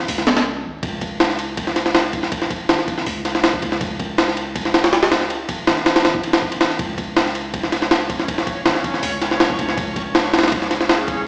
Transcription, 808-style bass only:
0.08 0.66 C#2 medium
0.64 0.81 G#1 medium
0.83 2.31 C#2 loud
2.69 3.05 G#1 loud
3.07 3.61 C#2 medium
3.62 3.79 C#2 medium
3.81 5.29 C#2 loud
5.68 6.03 G#1 loud
6.05 6.78 G#1 medium
6.79 8.27 C#2 loud
8.65 9.01 G#1 loud
9.03 9.57 C#2 medium
9.59 9.76 C#2 medium
9.77 11.25 C#2 loud

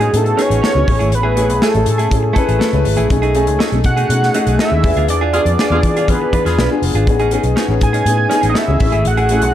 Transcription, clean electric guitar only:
0.00 0.11 C#4 soft
0.00 0.12 D#4 medium
0.00 0.12 G#4 medium
0.13 muted clean electric guitar stroke soft
0.24 muted clean electric guitar stroke soft
0.37 0.49 C#4 medium
0.37 0.49 D#4 medium
0.37 0.48 G#4 medium
0.49 0.60 C#4 soft
0.49 0.61 D#4 soft
0.49 0.63 G#4 medium
0.62 0.80 C#4 medium
0.62 0.74 D#4 medium
0.62 0.74 A4 medium
0.74 muted clean electric guitar stroke soft
0.87 muted clean electric guitar stroke soft
0.99 1.11 A3 soft
0.99 1.11 E4 medium
0.99 1.12 G#4 soft
1.12 muted clean electric guitar stroke soft
1.23 1.35 A3 medium
1.23 1.35 E4 medium
1.23 1.36 G#4 medium
1.36 1.51 A3 medium
1.36 1.49 E4 medium
1.36 1.48 G#4 medium
1.49 muted clean electric guitar stroke soft
1.62 1.80 A3 medium
1.62 1.74 E4 medium
1.62 1.73 G#4 medium
1.74 muted clean electric guitar stroke soft
1.86 muted clean electric guitar stroke soft
1.98 2.09 A3 medium
1.98 2.09 E4 soft
1.98 2.10 G#4 medium
2.10 muted clean electric guitar stroke soft
2.23 muted clean electric guitar stroke soft
2.33 2.47 A3 medium
2.33 2.47 E4 medium
2.33 2.46 A4 medium
2.47 2.58 A3 soft
2.47 2.59 E4 medium
2.47 2.60 G#4 medium
2.59 2.78 A3 medium
2.59 2.72 E4 medium
2.59 2.72 A4 medium
2.72 muted clean electric guitar stroke soft
2.85 muted clean electric guitar stroke soft
2.97 3.08 A3 medium
2.97 3.10 E4 medium
2.97 3.09 G#4 medium
3.09 muted clean electric guitar stroke soft
3.22 3.33 A3 medium
3.22 3.34 D#4 medium
3.22 3.35 G#4 medium
3.34 3.49 A3 medium
3.34 3.47 D#4 medium
3.34 3.46 G#4 medium
3.47 muted clean electric guitar stroke soft
3.59 3.77 A3 medium
3.59 3.71 D#4 medium
3.59 3.70 G#4 medium
3.72 muted clean electric guitar stroke soft
3.84 muted clean electric guitar stroke soft
3.97 4.09 A3 soft
3.97 4.10 D#4 medium
3.97 4.10 G#4 medium
4.10 muted clean electric guitar stroke soft
4.22 muted clean electric guitar stroke soft
4.35 4.48 A3 medium
4.35 4.47 D#4 medium
4.35 4.46 G#4 medium
4.47 4.59 A3 soft
4.47 4.60 D#4 medium
4.47 4.61 G#4 medium
4.60 4.78 A3 medium
4.60 4.72 D#4 medium
4.60 4.72 A4 medium
4.72 muted clean electric guitar stroke soft
4.84 muted clean electric guitar stroke soft
4.97 5.08 D4 soft
4.97 5.09 F4 medium
4.97 5.09 G#4 medium
5.21 5.33 D4 medium
5.21 5.33 F4 medium
5.21 5.35 G#4 medium
5.34 5.48 D4 medium
5.34 5.47 F4 medium
5.34 5.46 G#4 medium
5.47 muted clean electric guitar stroke soft
5.59 5.77 D4 medium
5.59 5.72 F4 medium
5.59 5.71 G#4 medium
5.73 muted clean electric guitar stroke soft
5.85 muted clean electric guitar stroke soft
5.97 6.08 D4 medium
5.97 6.08 F4 medium
5.97 6.09 G#4 medium
6.22 muted clean electric guitar stroke soft
6.33 6.46 D4 medium
6.33 6.45 F4 medium
6.33 6.45 B4 medium
6.45 6.57 D4 soft
6.45 6.58 F4 medium
6.45 6.59 G#4 medium
6.58 6.76 D4 medium
6.58 6.71 F4 medium
6.58 6.71 B4 medium
6.71 muted clean electric guitar stroke soft
6.84 muted clean electric guitar stroke soft
6.95 7.07 D4 soft
6.95 7.08 F4 medium
6.95 7.08 G#4 medium
7.08 muted clean electric guitar stroke soft
7.20 7.30 C#4 medium
7.20 7.32 D#4 medium
7.20 7.33 G#4 medium
7.32 7.46 C#4 medium
7.32 7.45 D#4 medium
7.32 7.43 G#4 medium
7.45 muted clean electric guitar stroke soft
7.56 7.74 C#4 medium
7.56 7.68 D#4 medium
7.56 7.67 G#4 medium
7.68 muted clean electric guitar stroke soft
7.81 muted clean electric guitar stroke soft
7.93 8.05 C#4 soft
7.93 8.05 D#4 soft
7.93 8.06 G#4 medium
8.06 muted clean electric guitar stroke soft
8.18 muted clean electric guitar stroke soft
8.29 8.42 C#4 medium
8.29 8.41 D#4 medium
8.29 8.40 G#4 medium
8.41 8.52 C#4 medium
8.41 8.54 D#4 medium
8.41 8.55 G#4 medium
8.54 8.73 C#4 medium
8.54 8.67 D#4 medium
8.54 8.67 A4 medium
8.67 muted clean electric guitar stroke soft
8.80 muted clean electric guitar stroke soft
8.92 9.04 A3 soft
8.92 9.04 E4 medium
8.92 9.05 G#4 soft
9.05 muted clean electric guitar stroke soft
9.17 9.29 A3 medium
9.17 9.30 E4 medium
9.17 9.30 G#4 medium
9.30 9.44 A3 medium
9.30 9.43 E4 medium
9.30 9.41 G#4 medium
9.43 muted clean electric guitar stroke soft

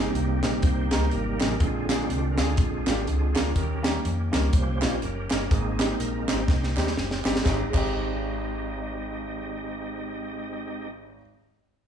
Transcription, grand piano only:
0.00 0.39 G#2 medium
0.43 0.55 G#3 medium
0.43 0.55 C4 medium
0.43 0.56 D#4 medium
0.43 0.56 G4 medium
0.43 0.56 A#4 medium
0.91 1.04 G#3 medium
0.91 1.04 C4 medium
0.91 1.04 D#4 medium
0.91 1.04 G4 medium
0.91 1.04 A#4 medium
1.39 1.52 G#3 medium
1.39 1.52 C4 medium
1.39 1.53 D#4 medium
1.39 1.53 G4 medium
1.39 1.53 G#4 medium
1.60 2.34 A#2 medium
1.89 2.01 G#3 medium
1.89 2.01 A#3 medium
1.89 2.02 D4 medium
1.89 2.02 F4 medium
1.89 2.02 G#4 medium
2.37 2.50 G#3 medium
2.37 2.50 A#3 medium
2.37 2.50 D4 medium
2.37 2.51 F4 medium
2.37 2.51 G#4 medium
2.87 2.99 G#3 medium
2.87 2.99 A#3 medium
2.87 2.99 D4 medium
2.87 2.99 F4 medium
2.87 3.00 G4 medium
3.35 3.47 G#3 medium
3.35 3.47 A#3 medium
3.35 3.48 D4 medium
3.35 3.48 F4 medium
3.35 3.48 A#4 medium
3.55 4.29 D#3 medium
3.82 3.95 G3 medium
3.82 3.96 A#3 medium
3.82 3.96 C#4 medium
3.82 3.96 D#4 medium
3.82 3.96 G4 medium
4.32 4.45 G3 medium
4.32 4.45 A#3 medium
4.32 4.45 C#4 medium
4.32 4.45 D#4 medium
4.32 4.45 A#4 medium
4.81 4.94 G3 medium
4.81 4.94 A#3 medium
4.81 4.94 C#4 medium
4.81 4.94 D#4 medium
4.81 4.94 F4 medium
5.29 5.42 G3 medium
5.29 5.43 A#3 medium
5.29 5.43 C#4 medium
5.29 5.43 D#4 medium
5.29 5.43 A#4 medium
5.51 6.24 G#2 medium
5.79 5.91 G3 medium
5.79 5.91 G#3 medium
5.79 5.92 C4 medium
5.79 5.92 D#4 medium
5.79 5.92 G4 medium
6.27 6.40 G3 medium
6.27 6.40 G#3 medium
6.27 6.40 C4 medium
6.27 6.40 D#4 medium
6.27 6.41 G4 medium
6.76 6.89 G3 medium
6.76 6.89 G#3 medium
6.76 6.89 C4 medium
6.76 6.89 D#4 medium
6.76 6.90 G4 medium
7.24 7.37 G3 medium
7.24 7.37 G#3 medium
7.24 7.38 C4 medium
7.24 7.38 D#4 medium
7.24 7.38 G4 medium
7.42 7.62 G#1 medium
7.42 7.60 G#3 medium
7.42 7.61 C4 medium
7.47 7.62 D#4 medium
7.47 7.63 G4 loud
7.70 11.17 G#1 medium
7.70 11.14 G#3 medium
7.70 11.16 C4 medium
7.75 11.19 D#4 medium
7.75 11.21 G4 loud

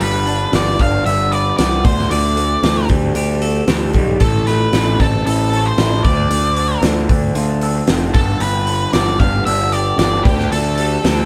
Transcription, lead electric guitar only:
0.01 0.55 B4 medium
0.55 0.81 D5 medium
0.81 1.05 F5 medium
1.06 1.33 E5 loud
1.32 1.56 D5 medium
1.57 1.85 D5 medium
1.85 2.11 C5 medium
2.12 2.86 D5 medium
4.21 4.45 A4 medium
4.47 5.01 B4 medium
5.00 5.24 A4 medium
5.26 5.67 A4 medium
5.66 6.04 C5 medium
6.04 6.79 D5 medium
8.14 8.41 A4 medium
8.40 8.89 B4 medium
8.94 9.20 D5 medium
9.19 9.45 F5 medium
9.45 9.73 E5 medium
9.72 9.98 D5 medium
9.99 10.26 D5 medium
10.24 10.51 G4 medium
10.52 11.25 A4 medium

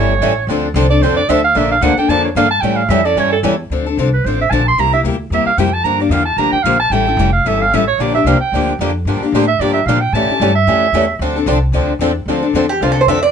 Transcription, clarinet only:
0.00 0.54 C#5 medium
0.90 1.03 D5 loud
1.02 1.16 C5 medium
1.16 1.31 D5 loud
1.29 1.44 E5 loud
1.44 1.59 F5 loud
1.57 1.70 E5 medium
1.71 1.84 F5 loud
1.82 1.97 F#5 medium
1.98 2.11 G5 loud
2.09 2.23 A5 loud
2.24 2.38 C#5 medium
2.37 2.50 F5 loud
2.51 2.62 A5 loud
2.61 2.78 G5 loud
2.76 2.91 F5 medium
2.89 3.07 E5 medium
3.05 3.20 D5 loud
3.19 3.32 C#5 loud
3.32 3.39 A4 loud
4.13 4.27 B4 medium
4.25 4.40 C5 medium
4.41 4.52 E5 loud
4.51 4.66 A5 medium
4.68 4.81 C6 loud
4.79 4.93 A#5 loud
4.93 5.00 E5 loud
5.34 5.46 E5 medium
5.46 5.60 F5 loud
5.58 5.74 G5 loud
5.73 5.86 A5 loud
5.84 6.00 A#5 loud
6.01 6.13 D5 medium
6.12 6.25 F5 loud
6.25 6.40 A5 loud
6.38 6.52 A#5 loud
6.52 6.64 G5 loud
6.63 6.79 F5 medium
6.80 6.93 A5 loud
6.92 7.32 G5 loud
7.32 7.48 F5 medium
7.47 7.62 E5 medium
7.61 7.76 F5 loud
7.74 7.87 E5 medium
7.87 8.02 C#5 medium
8.00 8.14 D5 medium
8.15 8.28 E5 loud
8.26 8.39 F5 medium
8.40 8.76 G5 medium
9.48 9.62 E5 loud
9.60 9.72 D5 medium
9.73 9.87 E5 medium
9.86 10.02 F5 medium
10.01 10.15 G5 loud
10.14 10.54 A5 loud
10.55 11.16 E5 loud

